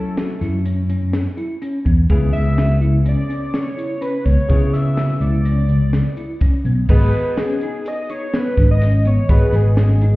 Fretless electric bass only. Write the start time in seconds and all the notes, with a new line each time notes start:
Already playing: F#3
0.41 F#2
1.86 E2
2.10 C#2
2.34 C#2
4.26 C#2
4.50 C#3
5.20 C#2
6.65 B1
6.89 G#1
8.58 G#1
9.29 G#1
9.52 G#1